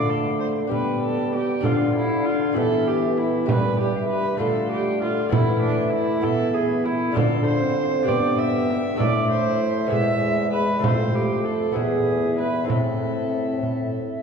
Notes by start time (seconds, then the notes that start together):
Already playing: D3 A3 D4 F4 A4 D5 F5
0.09 A4
0.40 C5
0.67 G3 B3 D4 G4 G5
0.72 B4, frame drum
1.02 A4
1.33 G4, frame drum
1.61 D3 F3 D4 A4 F5, frame drum
1.65 D3 F4
1.95 E4
2.25 F4
2.53 E3 B3 E4 G4 A4, frame drum
2.57 E5
2.88 G4
3.17 E4, frame drum
3.46 G2 G3 D4 G4 B4 D5, frame drum
3.79 G4
3.95 E5 F5
4.08 B4
4.37 D3 A3 D4 F4 A4 F5, frame drum
4.41 A3
4.71 G4
5.02 F4, frame drum
5.29 E3 A3 B3 E4 E5, frame drum
5.33 A3
5.62 D4
5.92 E4
6.21 B3 E4 A4 E5, frame drum
6.54 G#4
6.84 E4, frame drum
7.12 D3 D4 F4 A4
7.17 F5, frame drum
7.45 C5
7.62 C4
8.03 G2 D4 G4 B4
8.08 G2 B3 D5 G5, frame drum
8.39 E5
8.70 frame drum
8.96 A2 A3 E4 A4 D5 E5
9.00 frame drum
9.30 C5
9.86 G#3 B3 E4 G#4 E5
9.91 E2 E5, frame drum
10.53 B4, frame drum
10.79 F2 A3 C4 A4
10.84 C5 F5, frame drum
11.15 G4
11.45 A4
11.72 E2 B3 E4 G#4
11.76 E2 B3 E5, frame drum
12.39 B4, frame drum
12.64 C4 E4
12.68 A2 C4 A4 E5, frame drum
13.63 frame drum